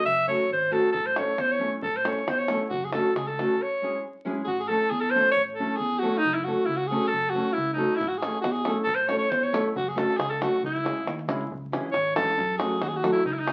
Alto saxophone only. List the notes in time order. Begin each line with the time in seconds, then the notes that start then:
0.05 E5
0.28 C#5
0.53 C5
0.73 A4
0.92 A4
1.06 C5
1.18 C#5
1.41 C5
1.52 C#5
1.83 A4
1.97 C5
2.07 C#5
2.30 C5
2.39 C#5
2.70 F#4
2.84 G#4
2.93 A4
3.16 G#4
3.27 A4
3.62 C#5
4.44 F#4 G#4
4.60 G#4
4.68 A4
4.91 G#4
5.01 A4
5.10 C5
5.32 C#5
5.54 A4
5.77 G#4
5.99 F#4
6.18 D#4
6.34 E4
6.44 F#4
6.66 E4
6.77 F#4
6.87 G#4
7.08 A4
7.30 F#4
7.52 E4
7.73 D#4
7.96 E4
8.08 F#4
8.18 G#4
8.41 F#4
8.52 G#4
8.84 A4
8.95 C5
9.08 C#5
9.18 C#5
9.30 C5
9.43 C#5
9.76 F#4
9.88 G#4
9.98 A4
10.17 G#4
10.30 A4
10.42 F#4
10.65 E4
11.92 C#5
12.16 A4
12.58 G#4
12.82 F#4
12.88 G#4
12.96 F#4
13.13 E4
13.25 D#4
13.33 E4
13.39 D#4